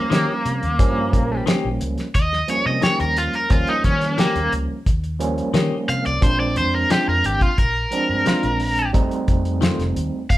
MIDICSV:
0, 0, Header, 1, 7, 480
1, 0, Start_track
1, 0, Tempo, 678733
1, 562, Time_signature, 4, 2, 24, 8
1, 7339, End_track
2, 0, Start_track
2, 0, Title_t, "Overdriven electric guitar"
2, 0, Program_c, 0, 29
2, 0, Note_on_c, 0, 58, 99
2, 1016, Note_off_c, 0, 58, 0
2, 1523, Note_on_c, 0, 75, 93
2, 1755, Note_off_c, 0, 75, 0
2, 1769, Note_on_c, 0, 73, 90
2, 1882, Note_off_c, 0, 73, 0
2, 1887, Note_on_c, 0, 75, 92
2, 2000, Note_off_c, 0, 75, 0
2, 2007, Note_on_c, 0, 73, 95
2, 2121, Note_off_c, 0, 73, 0
2, 2128, Note_on_c, 0, 70, 88
2, 2241, Note_off_c, 0, 70, 0
2, 2247, Note_on_c, 0, 65, 94
2, 2361, Note_off_c, 0, 65, 0
2, 2370, Note_on_c, 0, 70, 99
2, 2482, Note_off_c, 0, 70, 0
2, 2488, Note_on_c, 0, 65, 97
2, 2601, Note_off_c, 0, 65, 0
2, 2609, Note_on_c, 0, 63, 86
2, 2720, Note_off_c, 0, 63, 0
2, 2723, Note_on_c, 0, 61, 81
2, 2955, Note_off_c, 0, 61, 0
2, 2964, Note_on_c, 0, 58, 96
2, 3195, Note_off_c, 0, 58, 0
2, 4169, Note_on_c, 0, 77, 89
2, 4281, Note_off_c, 0, 77, 0
2, 4288, Note_on_c, 0, 74, 92
2, 4407, Note_off_c, 0, 74, 0
2, 4407, Note_on_c, 0, 72, 94
2, 4520, Note_off_c, 0, 72, 0
2, 4526, Note_on_c, 0, 74, 87
2, 4639, Note_off_c, 0, 74, 0
2, 4651, Note_on_c, 0, 72, 91
2, 4762, Note_off_c, 0, 72, 0
2, 4770, Note_on_c, 0, 70, 89
2, 4881, Note_off_c, 0, 70, 0
2, 4891, Note_on_c, 0, 67, 93
2, 5003, Note_off_c, 0, 67, 0
2, 5013, Note_on_c, 0, 70, 87
2, 5132, Note_off_c, 0, 70, 0
2, 5132, Note_on_c, 0, 67, 88
2, 5248, Note_off_c, 0, 67, 0
2, 5248, Note_on_c, 0, 65, 90
2, 5360, Note_off_c, 0, 65, 0
2, 5367, Note_on_c, 0, 70, 103
2, 6295, Note_off_c, 0, 70, 0
2, 7286, Note_on_c, 0, 77, 101
2, 7339, Note_off_c, 0, 77, 0
2, 7339, End_track
3, 0, Start_track
3, 0, Title_t, "Clean electric guitar"
3, 0, Program_c, 1, 27
3, 73, Note_on_c, 1, 51, 71
3, 78, Note_on_c, 1, 58, 70
3, 84, Note_on_c, 1, 61, 80
3, 88, Note_on_c, 1, 67, 86
3, 222, Note_off_c, 1, 51, 0
3, 224, Note_off_c, 1, 58, 0
3, 227, Note_off_c, 1, 61, 0
3, 229, Note_off_c, 1, 67, 0
3, 1033, Note_on_c, 1, 51, 80
3, 1039, Note_on_c, 1, 58, 84
3, 1043, Note_on_c, 1, 61, 88
3, 1049, Note_on_c, 1, 67, 88
3, 1182, Note_off_c, 1, 51, 0
3, 1185, Note_off_c, 1, 58, 0
3, 1187, Note_off_c, 1, 61, 0
3, 1190, Note_off_c, 1, 67, 0
3, 1991, Note_on_c, 1, 51, 68
3, 1998, Note_on_c, 1, 58, 76
3, 2003, Note_on_c, 1, 61, 80
3, 2007, Note_on_c, 1, 67, 90
3, 2141, Note_off_c, 1, 51, 0
3, 2144, Note_off_c, 1, 58, 0
3, 2146, Note_off_c, 1, 61, 0
3, 2148, Note_off_c, 1, 67, 0
3, 2954, Note_on_c, 1, 51, 73
3, 2962, Note_on_c, 1, 58, 81
3, 2966, Note_on_c, 1, 61, 81
3, 2971, Note_on_c, 1, 67, 88
3, 3101, Note_off_c, 1, 51, 0
3, 3105, Note_off_c, 1, 58, 0
3, 3108, Note_off_c, 1, 61, 0
3, 3110, Note_off_c, 1, 67, 0
3, 3915, Note_on_c, 1, 51, 85
3, 3921, Note_on_c, 1, 58, 87
3, 3925, Note_on_c, 1, 61, 89
3, 3931, Note_on_c, 1, 67, 93
3, 4062, Note_off_c, 1, 51, 0
3, 4065, Note_off_c, 1, 58, 0
3, 4067, Note_off_c, 1, 61, 0
3, 4070, Note_off_c, 1, 67, 0
3, 4881, Note_on_c, 1, 53, 69
3, 4887, Note_on_c, 1, 56, 75
3, 4891, Note_on_c, 1, 62, 86
3, 4896, Note_on_c, 1, 65, 77
3, 5025, Note_off_c, 1, 53, 0
3, 5028, Note_off_c, 1, 56, 0
3, 5030, Note_off_c, 1, 62, 0
3, 5032, Note_off_c, 1, 65, 0
3, 5839, Note_on_c, 1, 53, 66
3, 5847, Note_on_c, 1, 56, 70
3, 5851, Note_on_c, 1, 62, 78
3, 5856, Note_on_c, 1, 65, 86
3, 5984, Note_off_c, 1, 53, 0
3, 5988, Note_off_c, 1, 56, 0
3, 5990, Note_off_c, 1, 62, 0
3, 5993, Note_off_c, 1, 65, 0
3, 6796, Note_on_c, 1, 51, 85
3, 6803, Note_on_c, 1, 57, 82
3, 6807, Note_on_c, 1, 60, 90
3, 6812, Note_on_c, 1, 65, 92
3, 6943, Note_off_c, 1, 51, 0
3, 6946, Note_off_c, 1, 57, 0
3, 6949, Note_off_c, 1, 60, 0
3, 6951, Note_off_c, 1, 65, 0
3, 7339, End_track
4, 0, Start_track
4, 0, Title_t, "Tine electric piano"
4, 0, Program_c, 2, 4
4, 0, Note_on_c, 2, 53, 69
4, 0, Note_on_c, 2, 55, 59
4, 0, Note_on_c, 2, 58, 59
4, 0, Note_on_c, 2, 61, 70
4, 514, Note_off_c, 2, 53, 0
4, 515, Note_off_c, 2, 55, 0
4, 516, Note_off_c, 2, 58, 0
4, 518, Note_off_c, 2, 61, 0
4, 554, Note_on_c, 2, 53, 85
4, 556, Note_on_c, 2, 55, 73
4, 561, Note_on_c, 2, 58, 75
4, 564, Note_on_c, 2, 61, 91
4, 1459, Note_off_c, 2, 53, 0
4, 1460, Note_off_c, 2, 55, 0
4, 1463, Note_off_c, 2, 58, 0
4, 1464, Note_off_c, 2, 61, 0
4, 1752, Note_on_c, 2, 53, 72
4, 1755, Note_on_c, 2, 55, 64
4, 1758, Note_on_c, 2, 58, 62
4, 1764, Note_on_c, 2, 61, 75
4, 2432, Note_off_c, 2, 53, 0
4, 2434, Note_off_c, 2, 55, 0
4, 2436, Note_off_c, 2, 58, 0
4, 2438, Note_off_c, 2, 61, 0
4, 2470, Note_on_c, 2, 53, 67
4, 2473, Note_on_c, 2, 55, 64
4, 2477, Note_on_c, 2, 58, 62
4, 2480, Note_on_c, 2, 61, 76
4, 3376, Note_off_c, 2, 53, 0
4, 3378, Note_off_c, 2, 55, 0
4, 3380, Note_off_c, 2, 58, 0
4, 3382, Note_off_c, 2, 61, 0
4, 3670, Note_on_c, 2, 53, 79
4, 3673, Note_on_c, 2, 55, 74
4, 3677, Note_on_c, 2, 58, 72
4, 3682, Note_on_c, 2, 61, 93
4, 4351, Note_off_c, 2, 53, 0
4, 4353, Note_off_c, 2, 55, 0
4, 4354, Note_off_c, 2, 58, 0
4, 4357, Note_off_c, 2, 61, 0
4, 4392, Note_on_c, 2, 53, 72
4, 4393, Note_on_c, 2, 56, 64
4, 4399, Note_on_c, 2, 60, 65
4, 4400, Note_on_c, 2, 62, 76
4, 5297, Note_off_c, 2, 53, 0
4, 5298, Note_off_c, 2, 56, 0
4, 5301, Note_off_c, 2, 60, 0
4, 5302, Note_off_c, 2, 62, 0
4, 5595, Note_on_c, 2, 53, 68
4, 5599, Note_on_c, 2, 56, 62
4, 5602, Note_on_c, 2, 60, 66
4, 5604, Note_on_c, 2, 62, 78
4, 6274, Note_off_c, 2, 53, 0
4, 6276, Note_off_c, 2, 56, 0
4, 6277, Note_off_c, 2, 60, 0
4, 6278, Note_off_c, 2, 62, 0
4, 6315, Note_on_c, 2, 55, 80
4, 6319, Note_on_c, 2, 57, 76
4, 6321, Note_on_c, 2, 60, 75
4, 6326, Note_on_c, 2, 63, 91
4, 7220, Note_off_c, 2, 55, 0
4, 7222, Note_off_c, 2, 57, 0
4, 7223, Note_off_c, 2, 60, 0
4, 7226, Note_off_c, 2, 63, 0
4, 7339, End_track
5, 0, Start_track
5, 0, Title_t, "Fingered electric bass"
5, 0, Program_c, 3, 33
5, 78, Note_on_c, 3, 51, 94
5, 175, Note_off_c, 3, 51, 0
5, 321, Note_on_c, 3, 48, 82
5, 417, Note_off_c, 3, 48, 0
5, 445, Note_on_c, 3, 39, 81
5, 539, Note_off_c, 3, 39, 0
5, 562, Note_on_c, 3, 43, 89
5, 801, Note_on_c, 3, 34, 98
5, 812, Note_off_c, 3, 43, 0
5, 992, Note_off_c, 3, 34, 0
5, 1164, Note_on_c, 3, 34, 85
5, 1258, Note_off_c, 3, 34, 0
5, 1283, Note_on_c, 3, 37, 96
5, 1378, Note_off_c, 3, 37, 0
5, 1521, Note_on_c, 3, 39, 87
5, 1711, Note_off_c, 3, 39, 0
5, 1879, Note_on_c, 3, 48, 84
5, 1975, Note_off_c, 3, 48, 0
5, 2120, Note_on_c, 3, 39, 79
5, 2311, Note_off_c, 3, 39, 0
5, 2481, Note_on_c, 3, 39, 92
5, 2576, Note_off_c, 3, 39, 0
5, 2719, Note_on_c, 3, 51, 91
5, 3006, Note_off_c, 3, 51, 0
5, 3079, Note_on_c, 3, 39, 85
5, 3174, Note_off_c, 3, 39, 0
5, 3197, Note_on_c, 3, 37, 88
5, 3294, Note_off_c, 3, 37, 0
5, 3439, Note_on_c, 3, 39, 90
5, 3820, Note_off_c, 3, 39, 0
5, 3916, Note_on_c, 3, 51, 99
5, 4013, Note_off_c, 3, 51, 0
5, 4162, Note_on_c, 3, 48, 83
5, 4257, Note_off_c, 3, 48, 0
5, 4285, Note_on_c, 3, 36, 80
5, 4378, Note_off_c, 3, 36, 0
5, 4400, Note_on_c, 3, 34, 93
5, 4641, Note_on_c, 3, 41, 94
5, 4652, Note_off_c, 3, 34, 0
5, 4831, Note_off_c, 3, 41, 0
5, 5006, Note_on_c, 3, 41, 82
5, 5098, Note_off_c, 3, 41, 0
5, 5124, Note_on_c, 3, 32, 99
5, 5218, Note_off_c, 3, 32, 0
5, 5362, Note_on_c, 3, 34, 86
5, 5552, Note_off_c, 3, 34, 0
5, 5723, Note_on_c, 3, 43, 79
5, 5817, Note_off_c, 3, 43, 0
5, 5965, Note_on_c, 3, 34, 78
5, 6325, Note_off_c, 3, 34, 0
5, 6325, Note_on_c, 3, 29, 92
5, 6419, Note_off_c, 3, 29, 0
5, 6564, Note_on_c, 3, 41, 97
5, 6849, Note_off_c, 3, 41, 0
5, 6921, Note_on_c, 3, 29, 81
5, 7016, Note_off_c, 3, 29, 0
5, 7038, Note_on_c, 3, 39, 85
5, 7135, Note_off_c, 3, 39, 0
5, 7286, Note_on_c, 3, 29, 86
5, 7339, Note_off_c, 3, 29, 0
5, 7339, End_track
6, 0, Start_track
6, 0, Title_t, "Muted fingered electric bass strokes"
6, 2002, Note_on_c, 9, 29, 37
6, 2072, Note_off_c, 9, 29, 0
6, 5844, Note_on_c, 9, 29, 35
6, 5915, Note_off_c, 9, 29, 0
6, 7339, End_track
7, 0, Start_track
7, 0, Title_t, "Drums"
7, 82, Note_on_c, 9, 42, 86
7, 91, Note_on_c, 9, 38, 111
7, 153, Note_off_c, 9, 42, 0
7, 162, Note_off_c, 9, 38, 0
7, 322, Note_on_c, 9, 42, 60
7, 392, Note_off_c, 9, 42, 0
7, 443, Note_on_c, 9, 42, 38
7, 514, Note_off_c, 9, 42, 0
7, 560, Note_on_c, 9, 42, 83
7, 561, Note_on_c, 9, 36, 102
7, 631, Note_off_c, 9, 36, 0
7, 631, Note_off_c, 9, 42, 0
7, 801, Note_on_c, 9, 36, 77
7, 802, Note_on_c, 9, 42, 61
7, 872, Note_off_c, 9, 36, 0
7, 873, Note_off_c, 9, 42, 0
7, 1041, Note_on_c, 9, 42, 85
7, 1050, Note_on_c, 9, 38, 112
7, 1112, Note_off_c, 9, 42, 0
7, 1120, Note_off_c, 9, 38, 0
7, 1278, Note_on_c, 9, 42, 63
7, 1349, Note_off_c, 9, 42, 0
7, 1398, Note_on_c, 9, 42, 35
7, 1406, Note_on_c, 9, 38, 32
7, 1469, Note_off_c, 9, 42, 0
7, 1477, Note_off_c, 9, 38, 0
7, 1517, Note_on_c, 9, 42, 78
7, 1519, Note_on_c, 9, 36, 72
7, 1588, Note_off_c, 9, 42, 0
7, 1590, Note_off_c, 9, 36, 0
7, 1647, Note_on_c, 9, 38, 33
7, 1717, Note_off_c, 9, 38, 0
7, 1756, Note_on_c, 9, 42, 64
7, 1827, Note_off_c, 9, 42, 0
7, 1996, Note_on_c, 9, 42, 78
7, 2004, Note_on_c, 9, 38, 108
7, 2067, Note_off_c, 9, 42, 0
7, 2075, Note_off_c, 9, 38, 0
7, 2120, Note_on_c, 9, 42, 33
7, 2191, Note_off_c, 9, 42, 0
7, 2239, Note_on_c, 9, 42, 59
7, 2309, Note_off_c, 9, 42, 0
7, 2359, Note_on_c, 9, 42, 34
7, 2429, Note_off_c, 9, 42, 0
7, 2475, Note_on_c, 9, 42, 75
7, 2479, Note_on_c, 9, 36, 102
7, 2546, Note_off_c, 9, 42, 0
7, 2550, Note_off_c, 9, 36, 0
7, 2597, Note_on_c, 9, 42, 36
7, 2668, Note_off_c, 9, 42, 0
7, 2717, Note_on_c, 9, 42, 60
7, 2719, Note_on_c, 9, 36, 73
7, 2788, Note_off_c, 9, 42, 0
7, 2789, Note_off_c, 9, 36, 0
7, 2838, Note_on_c, 9, 42, 36
7, 2847, Note_on_c, 9, 38, 33
7, 2909, Note_off_c, 9, 42, 0
7, 2917, Note_off_c, 9, 38, 0
7, 2958, Note_on_c, 9, 42, 79
7, 2966, Note_on_c, 9, 38, 111
7, 3028, Note_off_c, 9, 42, 0
7, 3037, Note_off_c, 9, 38, 0
7, 3080, Note_on_c, 9, 42, 36
7, 3151, Note_off_c, 9, 42, 0
7, 3199, Note_on_c, 9, 42, 58
7, 3270, Note_off_c, 9, 42, 0
7, 3440, Note_on_c, 9, 36, 80
7, 3440, Note_on_c, 9, 42, 77
7, 3510, Note_off_c, 9, 36, 0
7, 3510, Note_off_c, 9, 42, 0
7, 3562, Note_on_c, 9, 42, 35
7, 3632, Note_off_c, 9, 42, 0
7, 3681, Note_on_c, 9, 42, 67
7, 3752, Note_off_c, 9, 42, 0
7, 3804, Note_on_c, 9, 42, 35
7, 3874, Note_off_c, 9, 42, 0
7, 3918, Note_on_c, 9, 42, 83
7, 3927, Note_on_c, 9, 38, 103
7, 3989, Note_off_c, 9, 42, 0
7, 3997, Note_off_c, 9, 38, 0
7, 4163, Note_on_c, 9, 42, 63
7, 4233, Note_off_c, 9, 42, 0
7, 4281, Note_on_c, 9, 42, 37
7, 4352, Note_off_c, 9, 42, 0
7, 4400, Note_on_c, 9, 42, 81
7, 4401, Note_on_c, 9, 36, 106
7, 4471, Note_off_c, 9, 42, 0
7, 4472, Note_off_c, 9, 36, 0
7, 4639, Note_on_c, 9, 42, 59
7, 4710, Note_off_c, 9, 42, 0
7, 4881, Note_on_c, 9, 42, 90
7, 4890, Note_on_c, 9, 38, 112
7, 4952, Note_off_c, 9, 42, 0
7, 4960, Note_off_c, 9, 38, 0
7, 5121, Note_on_c, 9, 42, 63
7, 5192, Note_off_c, 9, 42, 0
7, 5242, Note_on_c, 9, 36, 77
7, 5242, Note_on_c, 9, 42, 39
7, 5312, Note_off_c, 9, 42, 0
7, 5313, Note_off_c, 9, 36, 0
7, 5362, Note_on_c, 9, 36, 79
7, 5362, Note_on_c, 9, 42, 82
7, 5432, Note_off_c, 9, 36, 0
7, 5432, Note_off_c, 9, 42, 0
7, 5599, Note_on_c, 9, 42, 62
7, 5670, Note_off_c, 9, 42, 0
7, 5841, Note_on_c, 9, 42, 82
7, 5850, Note_on_c, 9, 38, 106
7, 5912, Note_off_c, 9, 42, 0
7, 5920, Note_off_c, 9, 38, 0
7, 5963, Note_on_c, 9, 42, 36
7, 6034, Note_off_c, 9, 42, 0
7, 6080, Note_on_c, 9, 46, 79
7, 6150, Note_off_c, 9, 46, 0
7, 6205, Note_on_c, 9, 42, 35
7, 6276, Note_off_c, 9, 42, 0
7, 6324, Note_on_c, 9, 42, 79
7, 6325, Note_on_c, 9, 36, 105
7, 6395, Note_off_c, 9, 36, 0
7, 6395, Note_off_c, 9, 42, 0
7, 6445, Note_on_c, 9, 42, 37
7, 6516, Note_off_c, 9, 42, 0
7, 6562, Note_on_c, 9, 42, 56
7, 6564, Note_on_c, 9, 36, 78
7, 6633, Note_off_c, 9, 42, 0
7, 6634, Note_off_c, 9, 36, 0
7, 6685, Note_on_c, 9, 42, 37
7, 6755, Note_off_c, 9, 42, 0
7, 6803, Note_on_c, 9, 42, 86
7, 6812, Note_on_c, 9, 38, 113
7, 6874, Note_off_c, 9, 42, 0
7, 6882, Note_off_c, 9, 38, 0
7, 6927, Note_on_c, 9, 42, 37
7, 6936, Note_on_c, 9, 38, 33
7, 6998, Note_off_c, 9, 42, 0
7, 7007, Note_off_c, 9, 38, 0
7, 7047, Note_on_c, 9, 42, 56
7, 7118, Note_off_c, 9, 42, 0
7, 7284, Note_on_c, 9, 36, 76
7, 7284, Note_on_c, 9, 42, 74
7, 7339, Note_off_c, 9, 36, 0
7, 7339, Note_off_c, 9, 42, 0
7, 7339, End_track
0, 0, End_of_file